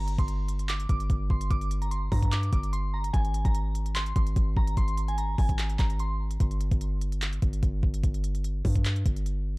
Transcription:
Already playing: 808-style bass G1, synth bell A#5
0.08 closed hi-hat
0.18 808-style bass G1, synth bell C6, kick, closed hi-hat
0.28 closed hi-hat
0.48 closed hi-hat
0.59 closed hi-hat
0.69 synth bell D6, clap, closed hi-hat
0.80 closed hi-hat
0.89 808-style bass G1, synth bell D6, kick, closed hi-hat
1.00 closed hi-hat
1.10 808-style bass G1, kick, closed hi-hat
1.30 808-style bass G1, synth bell C6, kick
1.41 closed hi-hat
1.51 808-style bass G1, synth bell D6, kick, closed hi-hat
1.61 closed hi-hat
1.71 closed hi-hat
1.82 synth bell A#5, closed hi-hat
1.91 synth bell C6, closed hi-hat
2.12 808-style bass G2, synth bell A#5, kick, open hi-hat
2.23 kick, closed hi-hat
2.32 synth bell D6, clap, closed hi-hat
2.43 closed hi-hat
2.53 808-style bass G1, synth bell D6, kick, closed hi-hat
2.63 closed hi-hat
2.73 synth bell C6, closed hi-hat
2.94 synth bell A#5
3.04 closed hi-hat
3.13 808-style bass G#1, synth bell G#5, kick, closed hi-hat
3.25 closed hi-hat
3.34 closed hi-hat
3.45 808-style bass G#1, synth bell A#5, kick, closed hi-hat
3.55 closed hi-hat
3.75 closed hi-hat
3.86 closed hi-hat
3.95 synth bell C6, clap, closed hi-hat
4.06 closed hi-hat
4.16 808-style bass G#1, synth bell C6, kick, closed hi-hat
4.27 closed hi-hat
4.36 808-style bass G#1, kick, closed hi-hat
4.57 808-style bass G#1, synth bell A#5, kick
4.67 closed hi-hat
4.77 808-style bass G#1, synth bell C6, kick, closed hi-hat
4.88 closed hi-hat
4.97 closed hi-hat
5.08 synth bell G#5, closed hi-hat
5.18 synth bell A#5, closed hi-hat
5.38 808-style bass G#1, synth bell G#5, kick, open hi-hat
5.49 kick, closed hi-hat
5.59 clap, closed hi-hat
5.69 closed hi-hat
5.79 808-style bass G#1, synth bell A#5, kick, clap, closed hi-hat
5.90 closed hi-hat
5.99 synth bell C6, closed hi-hat
6.31 closed hi-hat
6.40 808-style bass G1, kick, closed hi-hat
6.51 closed hi-hat
6.61 closed hi-hat
6.71 808-style bass G1, kick, closed hi-hat
6.81 closed hi-hat
7.01 closed hi-hat
7.12 closed hi-hat
7.22 clap, closed hi-hat
7.33 closed hi-hat
7.42 808-style bass G1, kick, closed hi-hat
7.53 closed hi-hat
7.63 808-style bass G1, kick, closed hi-hat
7.83 808-style bass G1, kick
7.94 closed hi-hat
8.04 808-style bass G1, kick, closed hi-hat
8.14 closed hi-hat
8.24 closed hi-hat
8.35 closed hi-hat
8.44 closed hi-hat
8.65 808-style bass G2, kick, open hi-hat
8.76 kick, closed hi-hat
8.85 clap, closed hi-hat
8.96 closed hi-hat
9.06 808-style bass G1, kick, closed hi-hat
9.16 closed hi-hat
9.26 closed hi-hat

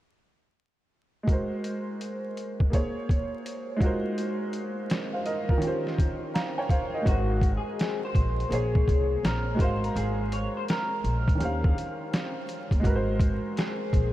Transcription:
1.23 upright piano G#3 F#4
1.28 upright piano A#4, kick, closed hi-hat
1.33 upright piano C5
1.64 closed hi-hat
2.01 closed hi-hat
2.37 closed hi-hat
2.60 kick
2.70 upright piano A#3 G#4 C5, kick, closed hi-hat
2.75 upright piano C#5
3.09 kick, closed hi-hat
3.46 closed hi-hat
3.77 upright piano G#3 D#4 F4
3.81 upright piano F#4 A#4, kick, closed hi-hat
3.86 upright piano C5
4.18 closed hi-hat
4.53 closed hi-hat
4.90 snare, closed hi-hat
5.13 upright piano C5 F5
5.26 upright piano A#4 D#5, closed hi-hat
5.49 upright piano F4 A#4, kick
5.58 upright piano D#3 C#4
5.62 upright piano F4 G4, closed hi-hat
5.67 upright piano C5
5.87 snare
5.98 kick, closed hi-hat
6.34 upright piano F5 A#5, snare, closed hi-hat
6.58 upright piano C#5 G5
6.69 upright piano C5 F5, kick, closed hi-hat
6.94 upright piano A#4 D#5
7.02 upright piano G#3 F#4
7.06 upright bass G#1, clean electric guitar F#4, upright piano A#4, kick, closed hi-hat
7.11 upright piano C5
7.41 kick, closed hi-hat
7.57 clean electric guitar G#4
7.79 snare, closed hi-hat
8.05 clean electric guitar C5
8.15 upright bass A#1, kick, closed hi-hat
8.40 closed hi-hat
8.49 upright bass A#1, upright piano A#3 G#4 C5, closed hi-hat
8.53 clean electric guitar G#4, upright piano C#5
8.75 kick
8.88 upright bass C2, kick, closed hi-hat
9.23 upright bass A#1, clean electric guitar A#4, snare, closed hi-hat
9.55 upright piano G#3 F#4
9.59 upright bass G#1, upright piano A#4 C5, clean electric guitar C5, kick, closed hi-hat
9.64 upright piano F5
9.84 clean electric guitar A#4, closed hi-hat
9.96 upright bass G#1, clean electric guitar G#4, closed hi-hat
10.32 clean electric guitar C#5, closed hi-hat
10.57 clean electric guitar C5
10.69 clean electric guitar A#4, snare, closed hi-hat
11.04 upright bass A#1, closed hi-hat
11.28 kick, closed hi-hat
11.35 upright piano D#3 C#4
11.40 upright bass D#2, upright piano G4 C5, closed hi-hat
11.45 upright piano F5
11.64 kick
11.78 closed hi-hat
12.14 snare, closed hi-hat
12.49 closed hi-hat
12.71 upright bass D#2, kick, closed hi-hat
12.80 upright piano G#3 F#4
12.84 upright bass G#1, upright piano A#4, kick, closed hi-hat
12.89 upright piano B4
12.95 upright piano C5
13.19 kick, closed hi-hat
13.57 clean electric guitar G#4, snare, closed hi-hat
13.93 upright bass A#1, kick, closed hi-hat

